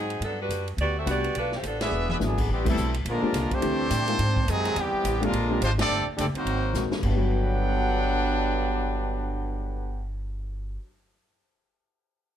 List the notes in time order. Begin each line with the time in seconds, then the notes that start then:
Already playing: G#2 F#3 C4 D#4 G#4
0.10 ride
0.20 G2 F#3 B3 A4, ride
0.24 D4
0.41 G3 D4 F#4 B4
0.49 F#2, hi-hat pedal, ride
0.68 ride
0.77 D2 B3 F#4 G4 D5, ride
0.98 C4 F#4 A4 E5
1.05 C2 G3 A3 B3 D4 F#4 G4 B4 D5 F#5, hi-hat pedal, ride
1.10 B3 D5
1.24 ride
1.35 B1 A3 D4 F4 B4, ride
1.52 snare
1.56 F3 A3 C4 G4
1.63 A1 F3 B3 A4, hi-hat pedal, ride
1.67 D4
1.80 B2 D3 G#3 G#4 B4 D5 E5, snare, ride
1.84 E3 B3 D4 G#4
1.92 E1
2.09 G#4 B4 D5 E5, high tom
2.19 G#1 F#3 G#3 B3 D4 E4, snare, hi-hat pedal
2.23 B2 D3 G#3 B3 D4 G#4
2.38 kick, crash
2.49 A1 C3 E3 G3 C4 G4
2.53 B3
2.65 C3 E3 G3 A3 B3 C4 E4, kick, crash
2.69 G3 A3 C4 E4 A4
2.77 B1, hi-hat pedal
2.94 ride
3.05 A#1 D3 F3 A#3, ride
3.09 G#3 D4 F4 A#4
3.22 F3 G#3 C4 D4 G4, muted upright bass stroke
3.33 C2, snare, hi-hat pedal, ride
3.51 G3 A3 C4 D4 G4 C5, muted upright bass stroke, kick, ride
3.61 D2 E3 A3 C4 D4 G4, ride
3.90 A2, hi-hat pedal, ride
4.07 G#3 A#3 C4 D#4 F4, ride
4.19 G#2, ride
4.36 kick
4.48 F#2 C3 D#3 F#3 G#3 C4 D#4 G#4, hi-hat pedal, ride
4.65 snare, ride
4.75 E2 C3 E3 G3, ride
4.79 B3 C4 G4
4.93 muted upright bass stroke
5.04 A1, hi-hat pedal, ride
5.21 D3 F3 G#3 A#3 C4 D4 F4 G4, ride
5.25 G#3 F4 A#4
5.33 A#1, ride
5.50 G#3 C4 D4 F4 G4
5.61 G#1 F3 G#3 C4 D4 F4 C5, hi-hat pedal, ride
5.77 G3 A3 C4 D4 G4 A4 D5, snare, ride
5.89 G1
6.07 muted upright bass stroke
6.17 F#1 G3 A3 C4 D4 G4 A4 D5, hi-hat pedal, ride
6.34 D#3 F#3 A#3 C4 D#4 F#4 C5, muted upright bass stroke, ride
6.45 G#1, ride
6.74 A#1 G#3 A#3 C4 D#4 F#4, snare, hi-hat pedal
6.91 G2, muted upright bass stroke, snare
6.97 D3
7.01 G1 G2 D3 F#3 A3 B3 D4 B4 F#5 G5, kick, crash
7.10 B3
7.16 F#3
7.20 cymbal swell